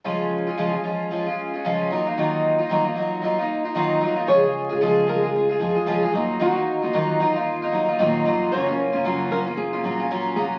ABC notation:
X:1
M:4/4
L:1/16
Q:"Swing 16ths" 1/4=113
K:Db
V:1 name="Nylon-string guitar"
z16 | z16 | d4 z2 B2 A4 z2 A2 | G6 z8 z2 |
d4 z2 B2 A4 z2 A2 |]
V:2 name="Twelve-string acoustic guitar"
[D,F,A,DF]3 [A,DF] [D,F,A,DF] [A,DF] [F,A,DF]2 [F,A,DF] [A,DF]2 [A,DF] [D,F,A,DF]2 [G,B,EF] [B,EF] | [E,G,B,EF]3 [B,EF] [E,G,B,EF] [B,EF] [G,B,EF]2 [G,B,EF] [B,EF]2 [B,EF] [E,G,B,EF]2 [G,B,EF] [B,EF] | [D,F,A,FA] [A,FA]2 [A,FA] [D,F,A,FA]2 [F,A,FA] [A,FA]2 [A,FA] [F,A,FA] [A,FA] [D,F,A,FA] [A,FA] [G,B,EF]2 | [E,G,B,EF] [B,EF]2 [B,EF] [E,G,B,EF]2 [G,B,EF] [B,EF]2 [B,EF] [G,B,EF] [B,EF] [E,G,B,EF]2 [G,B,EF]2 |
[G,B,DF] [B,DF]2 [B,DF] [G,B,DF]2 [G,B,DF] [B,DF]2 [B,DF] [G,B,DF] [B,DF] [G,B,DF]2 [G,B,DF]2 |]
V:3 name="Upright bass" clef=bass
z16 | z16 | D,,3 D,, D,,6 F,,4 E,,2 | E,,3 E,, E,,8 B,,2 F,,,2 |
G,,,3 G,,, G,,,6 B,,,4 F,,,2 |]